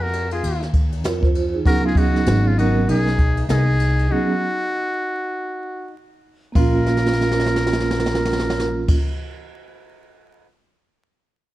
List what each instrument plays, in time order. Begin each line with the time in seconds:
Already playing: upright bass F2
0.01 clean electric guitar F#4, muted trumpet A#4
0.13 ride
0.31 clean electric guitar F4, muted trumpet G#4, ride
0.43 upright bass D#2, ride
0.62 snare
0.73 kick, ride
0.92 ride
1.04 upright bass F2, vibraphone F4 A#4, snare, hi-hat pedal, ride
1.23 vibraphone F4 C5, kick, snare
1.35 ride
1.55 vibraphone D#4 G#4
1.65 upright bass C#2, vibraphone F#3 B3 C#4 D#4 G#4, clean electric guitar F#4, muted trumpet A#4, kick, ride
1.86 clean electric guitar F4, muted trumpet G#4
1.95 clean electric guitar D#4, muted trumpet F#4, kick, ride
2.16 snare
2.26 upright bass G#1, snare, hi-hat pedal, ride
2.46 clean electric guitar C#4, muted trumpet F4
2.57 vibraphone F#3 B3 C#4 D#4 A#4, clean electric guitar D#4, muted trumpet F#4, ride
2.88 upright bass B1, clean electric guitar D#4, muted trumpet G#4, ride
3.07 snare
3.18 kick, ride
3.37 ride
3.49 upright bass C2, clean electric guitar D#4, muted trumpet G#4, snare, hi-hat pedal, ride
3.80 ride
3.99 ride
4.10 vibraphone F#3 B3 C#4 D#4 G#4, clean electric guitar D#4, muted trumpet F#4
6.52 upright bass A#1, vibraphone A#3 C#4, clean electric guitar F4, kick, crash
6.56 vibraphone F4, muted trumpet A#4
6.86 snare
6.97 snare
7.06 snare
7.13 snare
7.21 snare
7.31 snare
7.40 snare
7.46 snare
7.56 snare
7.67 snare
7.73 snare
7.80 snare
7.91 snare
8.00 snare
8.06 snare
8.15 snare
8.25 snare
8.33 snare
8.39 snare
8.50 snare
8.60 snare
8.88 kick, crash